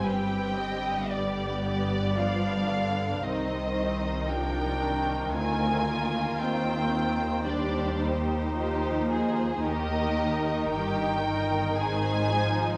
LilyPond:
<<
  \new Staff \with { instrumentName = "Violin section" } { \time 3/4 \key c \minor \tempo 4 = 56 g''4 d''8 d''8 f''4 | ees''4 g''4 aes''4 | g''4 d''8 r4. | ees''4 g''4 aes''4 | }
  \new Staff \with { instrumentName = "Violin section" } { \time 3/4 \key c \minor << { b'8 ees''8 d''2 | c''4 bes'4 bes'4 | c''8 c''2~ c''8 | bes'2 c''4 | } \\ { g'4 g'4 d'4 | ees'8 ees'4. f'4~ | f'4 g'4 g'8 aes'8 | g'4 g'8 bes'8 aes'4 | } >> }
  \new Staff \with { instrumentName = "Viola section" } { \clef bass \time 3/4 \key c \minor << { c'4 b2 | c'4 d'4 c'8 bes8 | c'4 d'8 ees'4. | ees'2. | } \\ { g4 g4 f8 d8 | ees4 f8 ees4. | ees4 g4 f4 | ees2 ees8 f8 | } >> }
  \new Staff \with { instrumentName = "Cello section" } { \clef bass \time 3/4 \key c \minor g,2. | c,2 d,4 | ees,2. | ees,4 g,4 aes,4 | }
  \new Staff \with { instrumentName = "Double bass section" } { \clef bass \time 3/4 \key c \minor g,,2. | c,2 d,4 | ees,2. | ees,4 g,,4 aes,,4 | }
>>